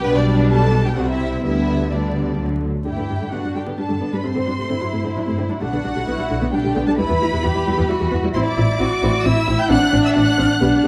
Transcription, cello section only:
0.04 B2
0.97 C3
1.45 D3
2.40 D3
2.87 E4
3.32 D4
3.78 D4
4.25 C4
4.70 E4
5.61 D4
6.06 E4
6.53 D4
6.98 E4
7.43 G4
7.89 F#4
8.35 E4
8.80 F#4
9.25 E4
9.70 D4
10.62 D4

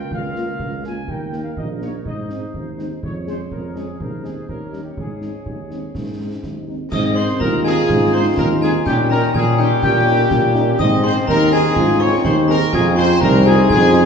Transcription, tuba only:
0.12 C#2
0.60 C#2
1.08 D#2
1.57 A#1
2.06 G#2
2.55 D#2
3.04 F2
3.52 F2
4.01 D#2
4.49 D#2
4.98 G#2
5.46 D#2
5.95 G#2
6.44 D#2
6.92 G#2
7.40 D#2
7.89 G#2
8.37 D#2
8.86 A#2
9.34 A#2
9.83 A#2
10.31 A#2
10.79 G#2
11.28 D#2
11.77 G#2
12.25 D#2
12.74 F2
13.22 C2
13.70 F2

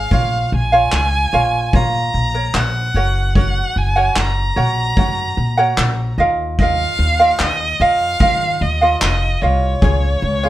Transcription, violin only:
Already playing: F5
0.55 G#5
1.75 A#5
2.57 F#5
3.38 F#5
3.78 G#5
4.19 A#5
6.61 F5
7.41 D#5
7.82 F5
8.62 D#5
9.01 D#5
9.42 C#5

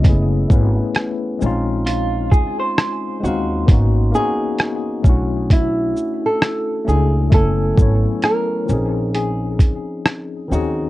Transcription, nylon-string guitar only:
Already playing: D#5
3.24 F#4
4.15 G#4
5.52 E4
6.26 A4
6.88 G#4
7.34 A4
8.24 A#4
9.15 G#4
10.52 F#4

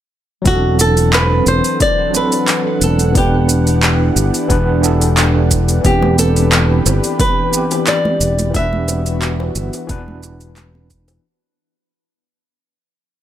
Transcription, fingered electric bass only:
0.46 E1
1.47 E1
2.82 E1
4.16 G1
4.50 E1
5.85 E1
6.86 G1
8.21 E1
9.56 G1
9.89 E1

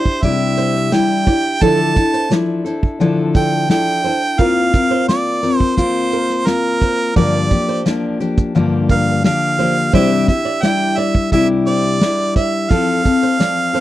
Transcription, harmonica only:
Already playing: C5
0.23 E5
0.93 G5
1.62 A5
3.36 G5
3.71 G5
4.40 F5
5.09 D5
5.58 C5
5.77 C5
6.47 A#4
7.17 D5
8.91 F5
9.25 F5
9.94 E5
10.28 E5
10.63 G5
10.98 E5
11.33 E5
11.67 D5
12.36 E5
12.71 F5

